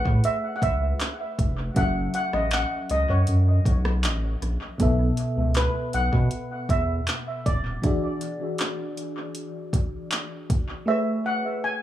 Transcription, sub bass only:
0.06 0.21 A2 medium
0.62 0.94 C#2 medium
1.39 1.70 F1 medium
1.76 2.08 F#1 loud
2.33 2.65 A1 medium
2.90 3.06 C#2 medium
3.09 3.25 F#2 medium
3.28 3.60 F#2 loud
3.65 4.06 B1 medium
4.04 4.36 A1 loud
4.42 4.58 A#1 medium
4.80 5.12 B1 loud
5.37 5.69 C#2 medium
5.94 6.10 B1 medium
6.13 6.29 B2 medium
6.69 7.01 E2 medium
7.46 7.78 D#1 medium

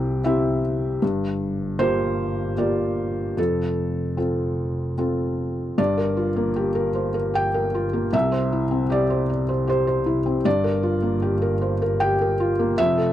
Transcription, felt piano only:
0.00 1.04 C2 medium
0.00 0.21 C4 medium
0.00 0.21 E4 medium
0.00 0.22 G4 medium
0.00 0.20 G5 loud
0.24 0.98 C4 medium
0.24 0.98 E4 medium
0.24 0.98 G4 medium
0.24 0.60 E5 medium
1.02 1.77 G2 medium
1.79 2.53 A#3 medium
1.79 2.54 F4 medium
1.79 2.54 G4 medium
1.79 2.53 C5 loud
2.57 3.34 A#3 soft
2.57 3.34 F4 soft
2.57 3.34 G4 soft
2.57 3.34 D5 medium
3.37 4.15 F2 medium
3.37 4.16 A4 medium
4.17 4.94 C4 soft
4.17 4.94 F4 soft
4.17 4.94 A4 soft
4.98 5.74 C4 soft
4.98 5.74 F4 soft
4.98 5.75 A4 soft
5.78 8.09 G2 medium
5.78 7.32 D5 medium
5.98 6.29 A#4 medium
6.17 6.48 F4 medium
6.36 6.68 A#3 medium
6.56 6.88 G4 medium
6.75 7.07 A#4 medium
6.95 7.15 C5 soft
7.14 7.47 A#4 medium
7.34 7.66 G4 medium
7.34 8.09 G5 medium
7.54 7.86 A#4 medium
7.75 8.06 F4 medium
7.93 8.13 A#3 medium
8.12 10.41 C2 medium
8.12 8.87 E5 loud
8.32 8.63 C5 medium
8.52 8.83 E4 medium
8.71 9.02 C4 medium
8.90 9.21 G4 medium
8.90 9.28 D5 medium
9.10 9.41 C5 medium
9.29 9.49 D5 soft
9.49 9.68 C5 medium
9.67 9.99 G4 medium
9.67 9.86 C5 medium
9.87 10.18 C5 medium
10.06 10.37 E4 medium
10.26 10.45 C4 medium
10.45 12.74 G2 medium
10.45 11.97 D5 medium
10.64 10.95 A#4 medium
10.83 11.14 F4 medium
11.02 11.34 A#3 medium
11.22 11.53 G4 medium
11.42 11.73 A#4 medium
11.61 11.81 C5 soft
11.82 12.13 A#4 medium
12.00 12.32 G4 medium
12.00 12.74 G5 medium
12.21 12.52 A#4 medium
12.40 12.70 F4 medium
12.59 12.78 A#3 medium
12.78 13.13 F2 medium
12.78 13.13 E5 loud
12.98 13.13 A4 medium

